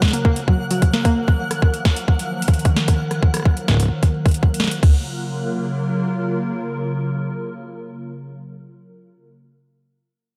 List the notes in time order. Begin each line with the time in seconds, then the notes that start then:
Already playing: C#3 F3 F#3 A#3 A#4 F#5
0.02 kick, cross-stick, snare
0.05 snare
0.08 snare
0.10 A#3, snare, closed hi-hat
0.25 A#3, kick
0.36 closed hi-hat
0.48 F#3, kick
0.71 F#3, closed hi-hat
0.82 kick, closed hi-hat
0.94 A#3, snare
1.05 A#3, kick, closed hi-hat
1.16 D#3 F3
1.28 kick
1.51 cross-stick, closed hi-hat
1.62 kick
1.74 closed hi-hat
1.85 kick, cross-stick, snare
1.96 closed hi-hat
2.08 kick
2.19 closed hi-hat
2.42 closed hi-hat
2.48 kick, closed hi-hat
2.54 closed hi-hat
2.59 closed hi-hat
2.65 kick, cross-stick, closed hi-hat
2.76 snare
2.88 kick, cross-stick, closed hi-hat
3.11 cross-stick, closed hi-hat
3.23 kick
3.34 cross-stick, closed hi-hat
3.37 cross-stick
3.40 cross-stick
3.42 kick, cross-stick
3.48 cross-stick
3.51 cross-stick
3.54 cross-stick, closed hi-hat
3.68 kick, cross-stick, snare
3.71 kick
3.74 kick
3.77 kick, closed hi-hat
3.80 kick
3.83 kick
3.86 kick
3.88 kick
4.03 kick, closed hi-hat
4.26 kick, closed hi-hat
4.28 closed hi-hat
4.31 closed hi-hat
4.34 closed hi-hat
4.43 kick
4.54 closed hi-hat
4.60 snare
4.64 snare
4.67 snare, closed hi-hat
4.83 C#3 F#3 A#3 F4 A#4, kick, crash